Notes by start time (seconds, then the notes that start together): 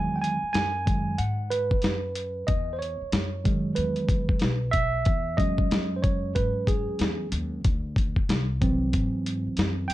Already playing: E2 D#3 F#3 G#3 G#5
0.16 G5
0.22 G#5, closed hi-hat
0.43 muted upright bass stroke
0.53 F#2 G#5, snare, closed hi-hat
0.86 D#3 F#3 G#3, kick, closed hi-hat
1.18 G#2 F#5, closed hi-hat
1.51 B4, closed hi-hat
1.71 muted upright bass stroke, kick
1.82 F#2, snare, closed hi-hat
2.15 closed hi-hat
2.47 E2 D#5, kick, closed hi-hat
2.73 C5
2.79 C#5, closed hi-hat
3.01 muted upright bass stroke
3.12 F#2, snare, closed hi-hat
3.44 D#3 F#3 G#3, kick, closed hi-hat
3.75 E2 B4, closed hi-hat
3.96 closed hi-hat
4.09 kick, closed hi-hat
4.29 muted upright bass stroke, kick
4.39 B1, snare, closed hi-hat
4.71 E5, kick, closed hi-hat
5.05 E2, kick, closed hi-hat
5.37 F#3 G#3 C#4 D#5, kick, closed hi-hat
5.58 muted upright bass stroke, kick
5.71 F#2, snare, closed hi-hat
5.96 C5
6.02 C#5, kick, closed hi-hat
6.35 G#2 B4, kick, closed hi-hat
6.67 G#4, kick, closed hi-hat
6.88 muted upright bass stroke
6.99 E2, snare, closed hi-hat
7.32 D#2, closed hi-hat
7.65 D2, kick, closed hi-hat
7.96 kick, closed hi-hat
8.16 muted upright bass stroke, kick
8.29 C2, snare, closed hi-hat
8.61 E3 F#3 C4, kick, closed hi-hat
8.93 G#2, kick, closed hi-hat
9.26 closed hi-hat
9.47 muted upright bass stroke
9.57 F#2, snare, closed hi-hat
9.88 F#1 G5, closed hi-hat